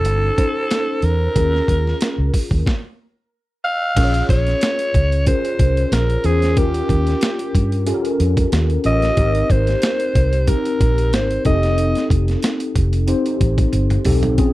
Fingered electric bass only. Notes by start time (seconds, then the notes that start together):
0.05 G1
1.03 E2
1.36 D#2
1.68 D#2
2.18 C#2
2.51 D#2
3.97 A#1
4.29 A#1
4.95 C#2
5.59 C2
5.92 A#1
6.24 E2
6.57 D#2
6.89 D#2
7.55 G2
8.20 F2
8.52 D#2
8.85 A1
9.17 G#1
9.50 G#1
10.15 C2
10.80 A#1
11.13 G#1
11.45 F1
12.10 F1
12.76 F1
13.41 A1
13.73 G1
14.06 B1
14.38 A#1